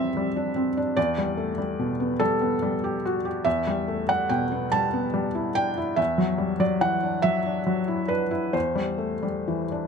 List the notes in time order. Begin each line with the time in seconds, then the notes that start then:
Already playing: E2 E3 G3 A3 C4 C5 E5
0.17 G3
0.36 D4
0.56 C4
0.77 D4
0.97 E2 D5
1.18 G3
1.37 A3
1.58 G3
1.79 B2
2.00 B3
2.20 G3 A4
2.41 B3
2.62 G3
2.84 G4
3.05 F#4
3.25 G4
3.45 E2 E5
3.67 G3
3.88 A3
4.09 G3 F#5
4.29 B2 G5
4.52 B3
4.72 G3 A5
4.93 B3
5.14 G3
5.35 E4
5.55 D4 G5
5.77 E4
5.96 E2 E5
6.18 F#3
6.38 G3
6.60 F#3 D5
6.81 E3 F#5
7.03 D4
7.22 F#3 E5
7.46 D4
7.66 F#3
7.88 E4
8.08 D4 B4
8.31 E4
8.53 E2 C5
8.75 G3
8.98 A3
9.23 G3
9.48 E3
9.72 D4